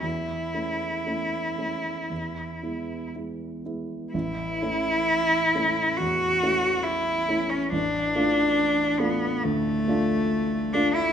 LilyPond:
<<
  \new Staff \with { instrumentName = "Cello" } { \time 4/4 \key d \lydian \tempo 4 = 68 e'2. r4 | e'2 fis'4 e'8. cis'16 | d'4. b8 a4. d'16 e'16 | }
  \new Staff \with { instrumentName = "Grand piano" } { \time 4/4 \key d \lydian e,8 <a cis'>8 <a cis'>8 <a cis'>8 e,8 <gis b e'>8 <gis b e'>8 <gis b e'>8 | a,,8 <a cis' e'>4 <a cis' e'>8 e,8 <a cis' e'>4 <a cis' e'>8 | a,,8 <a d' f'>4 <a d' f'>8 d,8 <a d' f'>4 <a d' f'>8 | }
>>